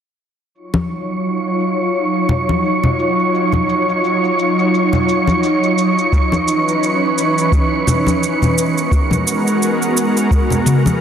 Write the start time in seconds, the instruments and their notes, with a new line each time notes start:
0.54 ambient pad F#3 D#4 F4 C#5, synth texture C#6, shaker
0.74 high conga
0.91 shaker
1.10 shaker
1.25 shaker
1.60 shaker
1.80 shaker
1.95 shaker
2.29 low conga, shaker
2.49 high conga, shaker
2.65 shaker
2.83 low conga, shaker
2.99 shaker
3.19 shaker
3.35 shaker
3.52 high conga, low conga, shaker
3.69 shaker
3.89 shaker
4.04 shaker
4.24 shaker
4.39 shaker
4.59 shaker
4.74 shaker
4.93 low conga, shaker
5.09 shaker
5.27 high conga, shaker
5.43 shaker
5.63 shaker
5.78 shaker
5.98 shaker
6.12 ambient pad E3 C#4 B4, kick, shaker
6.32 high conga, shaker
6.48 shaker
6.68 shaker
6.83 shaker
7.18 shaker
7.38 shaker
7.52 kick, shaker
7.87 low conga, shaker
8.07 high conga, shaker
8.23 shaker
8.42 low conga, shaker
8.57 ambient pad G#3 B3 F#4 A#4, shaker
8.78 shaker
8.91 kick, shaker
9.11 high conga, low conga, shaker
9.28 shaker
9.47 shaker
9.63 shaker
9.82 shaker
9.97 shaker
10.17 shaker
10.31 kick, shaker
10.50 low conga, shaker
10.66 high tom, shaker
10.86 high conga, shaker